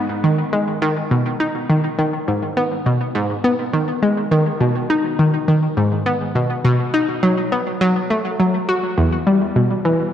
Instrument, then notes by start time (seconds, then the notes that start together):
synth arpeggio sound
0.24 D#3
0.53 G#3
0.82 D#3
1.11 B2
1.40 D#4
1.69 D#3
1.99 D#3
2.28 G#2
2.57 B3
2.86 B2
3.15 G#2
3.44 B3
3.73 D#3
4.03 G#3
4.31 D#3
4.60 B2
4.90 D#4
5.19 D#3
5.48 D#3
5.77 G#2
6.06 B3
6.35 B2
6.65 B2
6.94 D#4
7.23 F#3
7.52 B3
7.81 F#3
8.10 A3
8.40 F#3
8.69 F#4
8.98 E2
9.27 G3
9.56 B2
9.85 E3